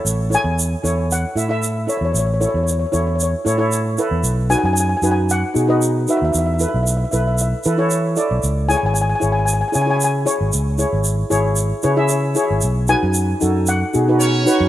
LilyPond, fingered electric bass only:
\new Staff \with { instrumentName = "Fingered electric bass" } { \clef bass \time 4/4 \key a \major \tempo 4 = 114 a,,8. e,8. e,4 a,4~ a,16 e,16 | a,,8. e,8. e,4 a,4~ a,16 e,16 | b,,8. fis,8. fis,4 b,4~ b,16 dis,16 | e,8. b,,8. b,,4 e4~ e16 b,,16 |
cis,8. gis,,8. gis,,4 cis4~ cis16 gis,,16 | cis,8. gis,,8. gis,,4 cis4~ cis16 gis,,16 | b,,8. fis,8. fis,4 b,4~ b,16 fis,16 | }